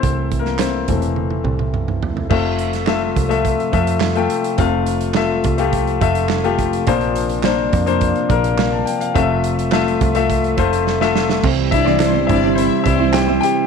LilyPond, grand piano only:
<<
  \new Staff \with { instrumentName = "Grand piano" } { \time 4/4 \key f \major \tempo 4 = 105 << { \tuplet 3/2 { <c' c''>4 <bes bes'>8 } <c' c''>4. r4. | r1 | r1 | r2. f''16 a''16 g''16 f''16~ |
f''16 r2. r8. | r8 <e' e''>16 <d' d''>8. e''8 <c' c''>8 <e' e''>8 <g' g''>8 <g' g''>8 | } \\ { r1 | <a f' e''>8. r16 <a f' e''>8 r16 <a f' e''>8 r16 <a f' e''>8 r16 <a f' g''>8 r16 | <a f' f''>8. r16 <a f' e''>8 r16 <a f' g'>8 r16 <a f' e''>8 r16 <a f' g'>8 r16 | <bes d' c''>8. r16 <bes d' c''>8 r16 <bes d' c''>8 r16 <bes d' bes'>8 r4 |
<a f' e''>8. r16 <a f' e''>8 r16 <a f' e''>8 r16 <a f' c''>8 r16 <a f' e''>8 r16 | r1 | } >> }
  \new Staff \with { instrumentName = "Grand piano" } { \clef bass \time 4/4 \key f \major r4. <e a c'>2~ <e a c'>8 | c4. r2 r8 | c4. r2 r8 | <bes, f>4. r2 r8 |
c4. r2 r8 | r4. <g c' e'>2~ <g c' e'>8 | }
>>